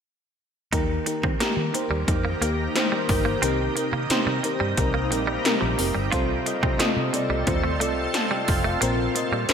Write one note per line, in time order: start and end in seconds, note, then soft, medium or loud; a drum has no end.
0.72 0.98 D#2 loud
0.72 3.40 D#3 medium
0.72 1.70 D#3 medium
0.72 0.94 A#3 loud
0.72 0.85 D#4 medium
0.72 0.94 D#4 medium
0.72 6.08 D#4 medium
0.72 3.40 G4 medium
0.72 0.94 G4 medium
0.72 3.40 A#4 medium
0.72 0.94 A#4 loud
0.72 kick loud
0.72 closed hi-hat loud
1.06 1.28 A#3 medium
1.06 1.28 D#4 medium
1.06 1.28 G4 medium
1.06 1.28 A#4 medium
1.06 muted clean electric guitar stroke soft
1.06 closed hi-hat medium
1.23 1.36 D#3 medium
1.23 1.36 C4 medium
1.23 kick medium
1.40 1.61 A#3 loud
1.40 1.53 A#3 medium
1.40 1.61 D#4 medium
1.40 1.62 G4 medium
1.40 1.62 A#4 loud
1.40 muted fingered electric bass stroke soft
1.40 snare loud
1.40 closed hi-hat medium
1.57 1.70 D#3 medium
1.74 1.95 A#3 medium
1.74 1.95 D#4 medium
1.74 1.95 G4 medium
1.74 1.95 C5 medium
1.74 muted clean electric guitar stroke soft
1.74 closed hi-hat medium
1.90 2.03 D#2 medium
1.90 2.03 G3 medium
2.07 2.33 F2 medium
2.07 2.28 A#3 medium
2.07 2.29 D#4 medium
2.07 2.29 G4 medium
2.07 2.29 A#4 medium
2.07 muted clean electric guitar stroke soft
2.07 kick medium
2.07 closed hi-hat medium
2.25 2.37 A#3 medium
2.41 2.67 D#2 medium
2.41 2.54 A#3 medium
2.41 2.62 A#3 medium
2.41 2.63 D#4 medium
2.41 2.63 G4 medium
2.41 2.63 A#4 medium
2.41 closed hi-hat medium
2.75 2.96 A#3 loud
2.75 2.96 D#4 medium
2.75 2.97 G4 medium
2.75 2.97 C5 loud
2.75 snare medium
2.75 closed hi-hat medium
2.92 3.05 G3 medium
3.09 3.34 G1 medium
3.09 3.30 A#3 medium
3.09 3.30 D#4 medium
3.09 3.30 G4 medium
3.09 3.31 A#4 medium
3.09 muted clean electric guitar stroke soft
3.09 kick medium
3.09 open hi-hat medium
3.25 3.38 A#3 medium
3.42 3.68 C2 loud
3.42 8.78 C3 medium
3.42 4.40 C3 medium
3.42 6.09 G3 medium
3.42 6.09 A#3 medium
3.42 3.55 C4 medium
3.42 3.64 C4 loud
3.42 3.64 D#4 medium
3.42 3.64 G4 medium
3.42 3.64 A#4 loud
3.42 closed hi-hat medium
3.76 3.97 C4 medium
3.76 3.98 D#4 medium
3.76 3.98 G4 medium
3.76 3.98 A#4 medium
3.76 muted clean electric guitar stroke soft
3.76 closed hi-hat medium
3.93 4.05 C3 medium
3.93 4.06 A#3 medium
4.10 4.31 C4 loud
4.10 4.31 D#4 loud
4.10 4.31 G4 medium
4.10 4.32 C5 loud
4.10 muted fingered electric bass stroke soft
4.10 snare loud
4.10 closed hi-hat medium
4.26 4.39 C3 medium
4.26 4.39 G3 medium
4.43 4.65 C4 medium
4.43 4.65 D#4 medium
4.43 4.65 G4 medium
4.43 4.65 A#4 medium
4.43 muted clean electric guitar stroke soft
4.43 closed hi-hat medium
4.60 4.73 G2 medium
4.60 4.73 G3 medium
4.77 5.12 C2 medium
4.77 4.98 C4 medium
4.77 4.99 D#4 medium
4.77 4.99 G4 medium
4.77 4.99 A#4 medium
4.77 kick medium
4.77 closed hi-hat medium
4.94 5.07 A#3 medium
5.11 5.37 A#1 medium
5.11 5.32 C4 medium
5.11 5.32 D#4 medium
5.11 5.32 G4 medium
5.11 5.32 A#4 medium
5.11 muted clean electric guitar stroke soft
5.11 closed hi-hat medium
5.27 5.40 G3 medium
5.45 5.66 C4 loud
5.45 5.66 D#4 loud
5.45 5.66 G4 loud
5.45 5.66 A#4 loud
5.45 snare loud
5.45 closed hi-hat medium
5.61 5.75 A#1 medium
5.61 5.74 F3 medium
5.78 5.92 F1 medium
5.78 5.99 C4 medium
5.78 6.00 D#4 medium
5.78 6.00 G4 medium
5.78 6.00 A#4 medium
5.78 muted clean electric guitar stroke soft
5.78 open hi-hat medium
5.95 6.08 G1 medium
5.95 6.08 G3 medium
6.12 6.38 C2 loud
6.12 7.10 C3 medium
6.12 6.33 C4 loud
6.12 8.80 C4 medium
6.12 6.24 F4 medium
6.12 9.53 F4 medium
6.12 6.34 F4 loud
6.12 8.80 A4 medium
6.12 6.34 A4 medium
6.12 6.34 C5 loud
6.12 kick loud
6.12 closed hi-hat medium
6.46 6.67 C4 medium
6.46 6.67 F4 medium
6.46 6.67 A4 medium
6.46 6.67 D#5 medium
6.46 muted clean electric guitar stroke soft
6.46 closed hi-hat medium
6.63 6.76 C3 medium
6.63 6.75 C4 medium
6.63 kick loud
6.79 6.92 A3 medium
6.79 7.00 C4 loud
6.79 7.01 F4 medium
6.79 7.01 A4 loud
6.79 7.01 D#5 loud
6.79 muted fingered electric bass stroke soft
6.79 snare loud
6.79 closed hi-hat medium
6.97 7.09 C3 loud
7.13 7.34 C4 medium
7.13 7.35 F4 medium
7.13 7.35 A4 medium
7.13 7.35 D5 medium
7.13 muted clean electric guitar stroke soft
7.13 closed hi-hat medium
7.30 7.43 C2 medium
7.30 7.43 G3 medium
7.47 7.80 D#2 medium
7.47 7.68 C4 medium
7.47 7.68 F4 medium
7.47 7.68 A4 medium
7.47 7.68 C5 medium
7.47 muted clean electric guitar stroke soft
7.47 kick loud
7.47 closed hi-hat medium
7.64 7.76 A3 medium
7.80 8.06 C2 medium
7.80 7.93 A3 medium
7.80 8.02 C4 medium
7.80 8.02 F4 medium
7.80 8.02 A4 medium
7.80 8.02 D5 medium
7.80 closed hi-hat medium
8.14 8.31 F5 medium
8.14 8.31 A5 medium
8.14 snare medium
8.14 closed hi-hat medium
8.31 8.44 G3 medium
8.31 8.64 D#5 medium
8.31 8.64 G5 medium
8.48 8.74 F1 medium
8.48 muted clean electric guitar stroke soft
8.48 kick loud
8.48 open hi-hat medium
8.64 8.77 A3 medium
8.64 8.98 D5 medium
8.64 8.98 F5 medium
8.81 9.07 A#1 loud
8.81 9.53 A#2 medium
8.81 8.94 A#3 medium
8.81 9.53 A#3 medium
8.81 9.03 C4 loud
8.81 9.53 C4 medium
8.81 9.03 F4 medium
8.81 9.03 A#4 loud
8.81 9.03 C5 loud
8.81 closed hi-hat loud
9.15 9.37 C4 medium
9.15 9.37 F4 medium
9.15 9.37 A#4 medium
9.15 9.37 D#5 medium
9.15 muted clean electric guitar stroke soft
9.15 closed hi-hat medium
9.32 9.45 A#2 medium
9.32 9.45 G3 medium
9.49 9.53 C4 loud
9.49 9.53 F4 medium
9.49 9.53 A#4 medium
9.49 muted fingered electric bass stroke soft
9.49 snare loud
9.49 closed hi-hat medium